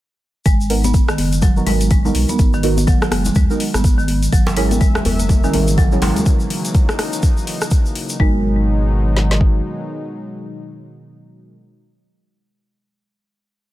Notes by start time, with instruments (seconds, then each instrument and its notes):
0.46 sub bass G#1, marimba G#3, kick, closed hi-hat, shaker
0.61 shaker
0.70 synth stab B3 D#4 F#4 A#4, open hi-hat
0.84 marimba B3, closed hi-hat, high conga, shaker
0.94 kick, closed hi-hat, high conga, shaker
1.08 marimba D#3, cross-stick, shaker
1.18 sub bass F#1, open hi-hat, high conga
1.32 closed hi-hat, shaker
1.42 marimba F#3, kick, closed hi-hat, low conga, shaker
1.57 synth stab B3 D#4 F#4 A#4, shaker
1.66 sub bass G#1, marimba G#3, synth stab B3 D#4 F#4 A#4, open hi-hat, high conga, low conga
1.80 closed hi-hat, shaker
1.90 marimba G#3, kick, closed hi-hat, shaker
2.05 synth stab B3 D#4 F#4 A#4, low conga, shaker
2.15 sub bass B1, open hi-hat
2.29 marimba B3, closed hi-hat, low conga, shaker
2.39 sub bass G#1, kick, closed hi-hat, shaker
2.53 marimba D#3, shaker
2.63 synth stab B3 D#4 F#4 A#4, open hi-hat
2.77 closed hi-hat, high conga, shaker
2.87 marimba F#3, kick, closed hi-hat, high conga, shaker
3.02 cross-stick, shaker
3.11 sub bass F#1, marimba G#3, cross-stick, open hi-hat, high conga
3.25 closed hi-hat, low conga, shaker
3.35 sub bass D#2, marimba G#3, kick, closed hi-hat, shaker
3.50 synth stab B3 D#4 F#4 A#4, shaker
3.60 open hi-hat
3.74 sub bass G#1, marimba B3, cross-stick, closed hi-hat, low conga, shaker
3.84 kick, closed hi-hat, shaker
3.98 marimba D#3, shaker
4.08 open hi-hat, high conga
4.23 closed hi-hat, shaker
4.32 sub bass G#1, analog synth pad C#3 E3 F#3 A#3 E5, marimba F#3, kick, closed hi-hat, shaker
4.47 djembe slap, djembe tone, shaker
4.56 marimba G#3, synth stab C#4 E4 G#4 A#4, open hi-hat
4.71 closed hi-hat, high conga, djembe tone, shaker
4.81 marimba G#3, kick, closed hi-hat, high conga, shaker
4.95 cross-stick, djembe tone, shaker
5.05 sub bass F#1, open hi-hat, high conga, djembe bass
5.20 marimba A#3, closed hi-hat, shaker
5.29 kick, closed hi-hat, djembe tone, low conga, shaker
5.44 marimba D#3, synth stab C#4 E4 G#4 A#4, shaker
5.53 sub bass G#1, synth stab C#4 E4 G#4 A#4, open hi-hat, high conga, djembe tone, low conga
5.68 closed hi-hat, shaker
5.78 marimba F#3, kick, closed hi-hat, djembe tone, shaker
5.92 synth stab C#4 E4 G#4 A#4, low conga, shaker
6.02 sub bass G#1, marimba G#3, open hi-hat, djembe slap
6.16 closed hi-hat, djembe tone, low conga, shaker
6.26 analog synth pad D#4, kick, closed hi-hat, shaker
6.40 shaker
6.50 open hi-hat
6.65 closed hi-hat, shaker
6.75 kick, closed hi-hat, shaker
6.89 cross-stick, shaker
6.99 cross-stick, open hi-hat
7.13 closed hi-hat, shaker
7.23 kick, closed hi-hat, shaker
7.37 shaker
7.47 open hi-hat
7.61 cross-stick, closed hi-hat, shaker
7.71 kick, closed hi-hat, shaker
7.86 shaker
7.95 open hi-hat
8.09 closed hi-hat, shaker
8.20 sub bass G#1, analog synth pad B2 D#3 F#3 G#3 D#4, marimba G#3, synth stab B3 D#4 F#4 A#4, kick
9.17 snare
9.31 snare
9.41 kick